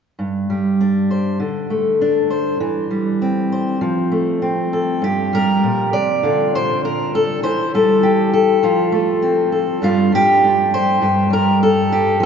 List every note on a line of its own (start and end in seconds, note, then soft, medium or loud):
0.19 1.40 G2 medium
0.50 1.40 G3 soft
0.81 1.37 D4 soft
1.11 1.37 C5 soft
1.40 2.60 D3 medium
1.70 2.56 A3 soft
2.01 2.57 D4 soft
2.30 2.57 C5 soft
2.60 3.77 E3 medium
2.91 3.81 G3 soft
3.22 4.41 C4 soft
3.52 3.78 C5 soft
3.81 4.99 F3 medium
4.12 4.99 A3 soft
4.42 5.03 C4 soft
4.73 5.03 A4 soft
5.02 5.63 G2 medium
5.02 5.94 G4 medium
5.33 6.24 G3 medium
5.33 5.93 A#4 medium
5.63 5.93 A#2 medium
5.93 6.24 C3 medium
5.93 6.54 D5 medium
6.23 7.43 D3 medium
6.23 7.41 F4 soft
6.55 6.84 C5 medium
6.85 7.14 A#4 medium
7.15 7.43 A4 medium
7.43 8.59 E3 medium
7.43 7.74 C5 medium
7.74 8.64 G3 medium
7.74 8.32 A4 medium
8.03 8.63 G4 medium
8.33 9.51 A4 medium
8.63 9.78 F3 medium
8.63 9.79 F4 soft
8.92 9.78 A3 medium
9.22 9.82 C4 soft
9.52 9.82 A4 soft
9.82 11.00 G2 medium
9.82 10.11 G3 medium
9.82 10.42 D4 soft
9.82 10.12 F4 loud
10.12 11.29 G3 medium
10.12 11.01 G4 medium
10.44 10.99 D4 soft
10.74 11.32 C5 loud
11.02 12.20 G2 medium
11.02 11.91 G4 soft
11.30 12.20 G3 soft
11.30 11.61 A#4 medium
11.63 12.21 A4 medium
11.92 12.21 G4 medium
12.20 12.26 F3 medium